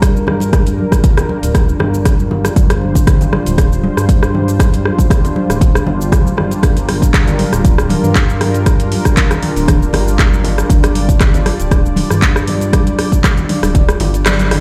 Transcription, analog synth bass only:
Already playing: G2
1.43 D1
1.80 G1
2.56 G1
3.46 D1
3.97 G2
5.49 D1
5.87 G1
6.12 D1
6.26 D2
6.38 G1
6.63 G1
7.53 D1
8.04 G2
9.56 D1
9.93 G1
10.70 G1
11.60 D1
12.11 G2
13.63 D1
14.00 G1

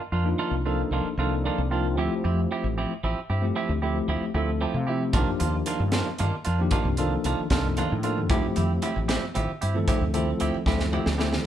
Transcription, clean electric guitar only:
0.12 A#3 D4 F4
0.38 D#3 A#3 D4 F4
0.66 A#3 D4 F4
0.92 D#3 A#3 D4 F4
1.19 D#3 A#3 D4 F4
1.46 D#3 A#3 D4 F4
1.71 A#3 D4 F4
1.98 F3 C4 E4 G4
2.24 C4 E4 G4
2.51 F3 C4 E4 G4
2.78 F3 C4 E4 G4
3.03 F3 C4 E4 G4
3.30 C4 E4 G4
3.56 F3 C4 E4 G4
3.82 C4 E4 G4
4.08 F3 C4 E4 G4
4.34 F3 C4 E4 G4
4.61 F3 C4 E4 G4
4.87 C4 E4 G4
5.13 D#3 A#3 D4 F4
5.40 A#3 D4 F4
5.66 D#3 A#3 D4 F4
5.93 D#3 A#3 D4 F4
6.19 D#3 A#3 D4 F4
6.45 A#3 D4 F4
6.72 D#3 A#3 D4 F4
6.98 A#3 D4 F4
7.25 D#3 A#3 D4 F4
7.51 D#3 A#3 D4 F4
7.77 D#3 A#3 D4 F4
8.04 A#3 D4 F4
8.30 F3 C4 E4 G4
8.56 C4 E4 G4
8.82 F3 C4 E4 G4
9.08 F3 C4 E4 G4
9.35 F3 C4 E4 G4
9.61 C4 E4 G4
9.88 F3 C4 E4 G4
10.14 C4 E4 G4
10.40 F3 C4 E4 G4
10.67 F3 C4 E4 G4
10.93 F3 C4 E4 G4
11.18 C4 E4 G4

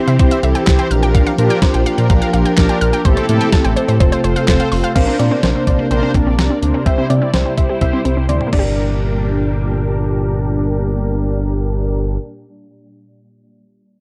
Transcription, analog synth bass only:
0.08 C3
0.19 C2
0.43 C2
0.67 C2
0.91 A#1
1.38 A#2
1.74 A#1
1.98 A#2
2.10 A#1
2.34 A#1
2.58 A#1
2.82 A#1
3.05 A1
3.29 A2
3.65 A1
3.88 A2
4.00 F1
4.24 F1
4.48 F1
4.72 F1
4.96 A#1
5.20 A#2
5.43 A#1
5.67 A#1
5.91 A#1
6.14 A#1
6.27 A#1
6.38 C2
6.62 D2
6.86 C2
7.10 C3
7.34 C2
7.58 C2
7.81 C2
8.05 C2
8.17 C2
8.29 D2
8.53 G1

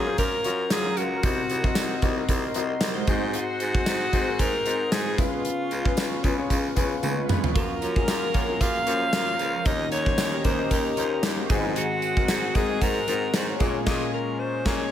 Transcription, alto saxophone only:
Already playing: G#4
0.19 A#4
0.72 G#4
0.98 F#4
3.35 F#4
4.40 A#4
4.92 G#4
5.19 F4
7.57 A#4
8.62 F5
9.66 D#5
9.92 C#5
10.45 C5
10.71 A#4
11.78 F#4
12.56 G#4
12.82 A#4
13.88 G#4
14.14 A#4
14.39 C5
14.66 C#5

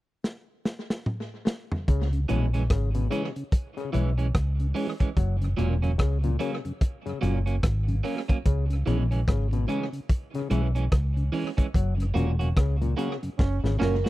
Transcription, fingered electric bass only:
1.89 C#2
2.30 A#1
2.70 G#1
3.95 B1
4.35 C#2
5.17 F#1
5.59 E1
6.00 C#2
7.23 F#1
7.64 G#1
8.46 C#2
8.87 A#1
9.28 G#1
10.51 B1
10.92 C#2
11.75 F#1
12.15 E1
12.57 C#2
13.40 F#1
13.64 G#1
13.81 F#1

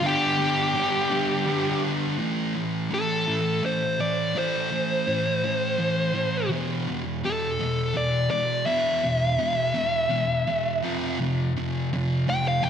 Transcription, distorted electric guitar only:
0.02 G2 D3 G3 B3 D4
0.38 G3 B3 D4
0.75 D3 G3 B3 D4
1.10 G2 D3 G3 B3 D4
1.46 D3 G3 B3 D4
2.18 A2 E3 A3
2.54 A2 E3
2.90 A2 E3
3.27 A2 E3
3.63 A2 E3
4.00 A2 E3
4.35 A2 E3 A3
4.71 A2 E3
5.07 A2 E3
5.44 A2 E3
5.79 A2 E3
6.14 A2 E3
6.50 E2 B2 E3
6.89 E2 B2
7.24 E2 B2
7.60 E2 B2
7.94 E2 B2
8.30 E2 B2
8.66 E2 B2 E3
9.04 E2 B2
9.39 E2 B2
9.74 E2 B2
10.09 E2 B2
10.47 E2 B2
10.83 F2 C3 F3
11.19 F2 C3
11.56 F2 C3
11.93 F2 C3
12.28 F2 C3
12.63 F2 C3

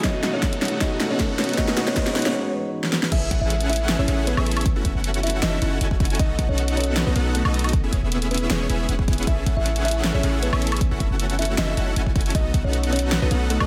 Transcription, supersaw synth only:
0.04 B3 D#4 F#4 A4 D#5
0.23 B3 D#4 F#4 A4 F#5
0.33 B3 D#4 F#4 A4 F#5
0.81 B3 F#4 A4 D#5
1.00 B3 D#4 F#4 A4 F#5
1.10 B3 D#4 F#4 A4 F#5
1.58 B3 D#4 F#4 G#4 D#5
1.77 B3 D#4 F#4 G#4 F#5
1.87 B3 D#4 F#4 G#4 F#5
1.96 B3 D#4 F#4 G#4 D#5
2.16 B3 D#4 F#4 G#4 F#5
2.26 B3 D#4 F#4 G#4 F#5
3.12 C#4 E4 G#4 A4 E5
3.31 C#4 E4 G#4 A4 F#5
3.41 C#4 E4 G#4 A4 F#5
3.99 C#4 E4 G#4 A4 E5
4.08 C#4 E4 G#4 A4 F#5
4.37 C#4 E4 G#4 A4 E5
4.76 C#4 E4 F#4 A4 F#5
4.85 C#4 E4 F#4 A4 E5
4.95 C#4 E4 F#4 A4 F#5
5.42 C#4 E4 F#4 E5
5.62 C#4 E4 F#4 A4 F#5
5.81 C#4 E4 F#4 A4 G#5
6.19 B3 D#4 F#4 A4 D#5
6.39 B3 D#4 F#4 A4 F#5
6.49 B3 D#4 F#4 A4 F#5
7.07 B3 D#4 F#4 A4 D#5
7.16 B3 D#4 F#4 A4 F#5
7.45 B3 D#4 F#4 A4 D#5
7.83 B3 C#4 E4 G#4 E5
7.93 B3 C#4 E4 G#4 C#5
8.03 B3 C#4 E4 G#4 E5
8.50 B3 C#4 E4 G#4 C#5
8.69 B3 C#4 E4 G#4 E5
8.89 B3 C#4 E4 G#4 F#5
9.27 C#4 E4 G#4 A4 E5
9.46 C#4 E4 G#4 A4 F#5
9.56 C#4 E4 G#4 A4 F#5
10.14 C#4 E4 G#4 A4 E5
10.23 C#4 E4 G#4 A4 F#5
10.53 C#4 E4 G#4 A4 E5
10.91 C#4 E4 F#4 A4 F#5
11.00 C#4 E4 F#4 A4 E5
11.10 C#4 E4 F#4 A4 F#5
11.58 E4 F#4 A4 E5
11.77 C#4 E4 F#4 A4 F#5
11.96 C#4 E4 F#4 A4 G#5
12.35 B3 D#4
12.54 B3 D#4 F#4 A4 F#5
12.64 B3 D#4 F#4 A4 F#5
13.22 B3 D#4 F#4 A4 D#5
13.31 B3 D#4 F#4 A4 F#5
13.60 B3 D#4 F#4 A4 D#5

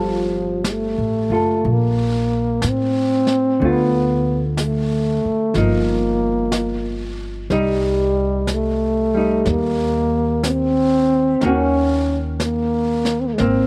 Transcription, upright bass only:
Already playing: G1
0.98 A1
1.30 F#1
1.65 A#1
2.64 A2
3.61 D2
5.25 muted upright bass stroke
5.55 G1
7.50 C2
9.46 D#2
11.43 D#2
13.40 G#1

